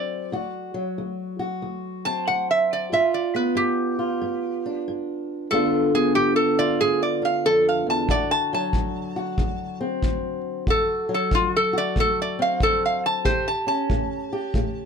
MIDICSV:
0, 0, Header, 1, 4, 480
1, 0, Start_track
1, 0, Tempo, 645856
1, 244, Time_signature, 4, 2, 24, 8
1, 11039, End_track
2, 0, Start_track
2, 0, Title_t, "Resonator guitar played with a steel bar"
2, 0, Program_c, 0, 25
2, 0, Note_on_c, 0, 74, 89
2, 394, Note_off_c, 0, 74, 0
2, 1525, Note_on_c, 0, 81, 97
2, 1680, Note_off_c, 0, 81, 0
2, 1691, Note_on_c, 0, 78, 89
2, 1843, Note_off_c, 0, 78, 0
2, 1863, Note_on_c, 0, 76, 85
2, 2010, Note_off_c, 0, 76, 0
2, 2028, Note_on_c, 0, 74, 85
2, 2172, Note_off_c, 0, 74, 0
2, 2181, Note_on_c, 0, 76, 82
2, 2329, Note_off_c, 0, 76, 0
2, 2335, Note_on_c, 0, 74, 79
2, 2486, Note_off_c, 0, 74, 0
2, 2496, Note_on_c, 0, 71, 68
2, 2646, Note_off_c, 0, 71, 0
2, 2651, Note_on_c, 0, 67, 93
2, 3580, Note_off_c, 0, 67, 0
2, 4093, Note_on_c, 0, 69, 101
2, 4400, Note_off_c, 0, 69, 0
2, 4421, Note_on_c, 0, 68, 90
2, 4569, Note_off_c, 0, 68, 0
2, 4572, Note_on_c, 0, 67, 102
2, 4723, Note_off_c, 0, 67, 0
2, 4726, Note_on_c, 0, 69, 85
2, 4882, Note_off_c, 0, 69, 0
2, 4896, Note_on_c, 0, 74, 99
2, 5047, Note_off_c, 0, 74, 0
2, 5059, Note_on_c, 0, 68, 106
2, 5208, Note_off_c, 0, 68, 0
2, 5222, Note_on_c, 0, 74, 82
2, 5370, Note_off_c, 0, 74, 0
2, 5388, Note_on_c, 0, 77, 86
2, 5533, Note_off_c, 0, 77, 0
2, 5543, Note_on_c, 0, 69, 105
2, 5690, Note_off_c, 0, 69, 0
2, 5712, Note_on_c, 0, 77, 80
2, 5855, Note_off_c, 0, 77, 0
2, 5871, Note_on_c, 0, 81, 96
2, 6014, Note_off_c, 0, 81, 0
2, 6026, Note_on_c, 0, 74, 97
2, 6172, Note_off_c, 0, 74, 0
2, 6178, Note_on_c, 0, 81, 96
2, 6328, Note_off_c, 0, 81, 0
2, 6350, Note_on_c, 0, 81, 85
2, 7270, Note_off_c, 0, 81, 0
2, 7955, Note_on_c, 0, 69, 97
2, 8252, Note_off_c, 0, 69, 0
2, 8282, Note_on_c, 0, 69, 89
2, 8420, Note_off_c, 0, 69, 0
2, 8433, Note_on_c, 0, 65, 93
2, 8575, Note_off_c, 0, 65, 0
2, 8595, Note_on_c, 0, 69, 105
2, 8736, Note_off_c, 0, 69, 0
2, 8753, Note_on_c, 0, 74, 107
2, 8895, Note_off_c, 0, 74, 0
2, 8919, Note_on_c, 0, 69, 99
2, 9058, Note_off_c, 0, 69, 0
2, 9080, Note_on_c, 0, 74, 89
2, 9219, Note_off_c, 0, 74, 0
2, 9230, Note_on_c, 0, 77, 91
2, 9374, Note_off_c, 0, 77, 0
2, 9388, Note_on_c, 0, 69, 113
2, 9532, Note_off_c, 0, 69, 0
2, 9554, Note_on_c, 0, 77, 77
2, 9695, Note_off_c, 0, 77, 0
2, 9705, Note_on_c, 0, 81, 96
2, 9850, Note_on_c, 0, 72, 100
2, 9851, Note_off_c, 0, 81, 0
2, 10003, Note_off_c, 0, 72, 0
2, 10016, Note_on_c, 0, 81, 91
2, 10157, Note_off_c, 0, 81, 0
2, 10166, Note_on_c, 0, 81, 81
2, 11039, Note_off_c, 0, 81, 0
2, 11039, End_track
3, 0, Start_track
3, 0, Title_t, "Steel-string acoustic guitar"
3, 0, Program_c, 1, 25
3, 0, Note_on_c, 1, 38, 68
3, 0, Note_on_c, 1, 54, 57
3, 0, Note_on_c, 1, 60, 61
3, 0, Note_on_c, 1, 66, 70
3, 207, Note_off_c, 1, 38, 0
3, 220, Note_off_c, 1, 66, 0
3, 222, Note_off_c, 1, 60, 0
3, 240, Note_on_c, 1, 38, 78
3, 248, Note_on_c, 1, 66, 71
3, 543, Note_off_c, 1, 54, 0
3, 551, Note_on_c, 1, 54, 60
3, 688, Note_off_c, 1, 38, 0
3, 729, Note_on_c, 1, 38, 70
3, 1027, Note_off_c, 1, 66, 0
3, 1036, Note_on_c, 1, 66, 70
3, 1172, Note_off_c, 1, 38, 0
3, 1206, Note_on_c, 1, 38, 69
3, 1533, Note_on_c, 1, 60, 55
3, 1651, Note_off_c, 1, 38, 0
3, 1695, Note_on_c, 1, 38, 68
3, 2136, Note_off_c, 1, 38, 0
3, 2146, Note_off_c, 1, 66, 0
3, 2155, Note_off_c, 1, 60, 0
3, 2165, Note_off_c, 1, 54, 0
3, 2171, Note_on_c, 1, 43, 71
3, 2175, Note_on_c, 1, 65, 75
3, 2487, Note_on_c, 1, 59, 62
3, 2614, Note_off_c, 1, 43, 0
3, 2639, Note_on_c, 1, 43, 73
3, 2961, Note_off_c, 1, 65, 0
3, 2964, Note_on_c, 1, 65, 60
3, 3089, Note_off_c, 1, 43, 0
3, 3133, Note_on_c, 1, 43, 75
3, 3461, Note_on_c, 1, 62, 59
3, 3575, Note_off_c, 1, 43, 0
3, 3625, Note_on_c, 1, 43, 67
3, 4062, Note_off_c, 1, 43, 0
3, 4071, Note_off_c, 1, 65, 0
3, 4072, Note_off_c, 1, 59, 0
3, 4099, Note_on_c, 1, 44, 75
3, 4106, Note_on_c, 1, 50, 70
3, 4110, Note_on_c, 1, 59, 67
3, 4111, Note_off_c, 1, 62, 0
3, 4114, Note_on_c, 1, 62, 67
3, 4119, Note_on_c, 1, 65, 75
3, 4407, Note_off_c, 1, 59, 0
3, 4418, Note_on_c, 1, 59, 60
3, 4538, Note_off_c, 1, 44, 0
3, 4576, Note_on_c, 1, 44, 79
3, 4889, Note_off_c, 1, 65, 0
3, 4898, Note_on_c, 1, 65, 71
3, 5017, Note_off_c, 1, 44, 0
3, 5056, Note_on_c, 1, 44, 78
3, 5362, Note_off_c, 1, 62, 0
3, 5365, Note_on_c, 1, 62, 57
3, 5497, Note_off_c, 1, 44, 0
3, 5538, Note_on_c, 1, 41, 65
3, 5841, Note_off_c, 1, 41, 0
3, 5846, Note_on_c, 1, 40, 58
3, 5998, Note_off_c, 1, 59, 0
3, 5998, Note_off_c, 1, 65, 0
3, 6013, Note_off_c, 1, 40, 0
3, 6019, Note_on_c, 1, 38, 83
3, 6020, Note_on_c, 1, 66, 76
3, 6339, Note_on_c, 1, 54, 60
3, 6459, Note_off_c, 1, 38, 0
3, 6503, Note_on_c, 1, 38, 70
3, 6806, Note_off_c, 1, 66, 0
3, 6809, Note_on_c, 1, 66, 67
3, 6941, Note_off_c, 1, 38, 0
3, 6976, Note_on_c, 1, 38, 90
3, 7285, Note_off_c, 1, 62, 0
3, 7288, Note_on_c, 1, 60, 64
3, 7417, Note_off_c, 1, 38, 0
3, 7448, Note_on_c, 1, 38, 78
3, 7893, Note_off_c, 1, 38, 0
3, 7913, Note_off_c, 1, 60, 0
3, 7913, Note_off_c, 1, 66, 0
3, 7932, Note_on_c, 1, 38, 72
3, 7936, Note_on_c, 1, 66, 67
3, 7937, Note_off_c, 1, 50, 0
3, 8232, Note_off_c, 1, 54, 0
3, 8241, Note_on_c, 1, 54, 60
3, 8375, Note_off_c, 1, 38, 0
3, 8407, Note_on_c, 1, 38, 76
3, 8710, Note_off_c, 1, 66, 0
3, 8719, Note_on_c, 1, 66, 64
3, 8852, Note_off_c, 1, 38, 0
3, 8890, Note_on_c, 1, 38, 83
3, 9208, Note_on_c, 1, 60, 62
3, 9334, Note_off_c, 1, 38, 0
3, 9366, Note_on_c, 1, 38, 72
3, 9811, Note_off_c, 1, 38, 0
3, 9827, Note_off_c, 1, 66, 0
3, 9831, Note_off_c, 1, 60, 0
3, 9844, Note_on_c, 1, 45, 76
3, 9847, Note_on_c, 1, 67, 73
3, 9848, Note_off_c, 1, 54, 0
3, 10156, Note_on_c, 1, 61, 56
3, 10289, Note_off_c, 1, 45, 0
3, 10335, Note_on_c, 1, 45, 76
3, 10644, Note_off_c, 1, 67, 0
3, 10647, Note_on_c, 1, 67, 65
3, 10774, Note_off_c, 1, 45, 0
3, 10815, Note_on_c, 1, 45, 79
3, 11039, Note_off_c, 1, 45, 0
3, 11039, Note_off_c, 1, 61, 0
3, 11039, Note_off_c, 1, 67, 0
3, 11039, End_track
4, 0, Start_track
4, 0, Title_t, "Drums"
4, 6010, Note_on_c, 9, 36, 65
4, 6085, Note_off_c, 9, 36, 0
4, 6489, Note_on_c, 9, 36, 65
4, 6563, Note_off_c, 9, 36, 0
4, 6970, Note_on_c, 9, 36, 66
4, 7044, Note_off_c, 9, 36, 0
4, 7451, Note_on_c, 9, 36, 61
4, 7525, Note_off_c, 9, 36, 0
4, 7930, Note_on_c, 9, 36, 70
4, 8004, Note_off_c, 9, 36, 0
4, 8409, Note_on_c, 9, 36, 70
4, 8483, Note_off_c, 9, 36, 0
4, 8889, Note_on_c, 9, 36, 60
4, 8963, Note_off_c, 9, 36, 0
4, 9368, Note_on_c, 9, 36, 67
4, 9442, Note_off_c, 9, 36, 0
4, 9849, Note_on_c, 9, 36, 63
4, 9923, Note_off_c, 9, 36, 0
4, 10329, Note_on_c, 9, 36, 68
4, 10403, Note_off_c, 9, 36, 0
4, 10806, Note_on_c, 9, 36, 59
4, 10881, Note_off_c, 9, 36, 0
4, 11039, End_track
0, 0, End_of_file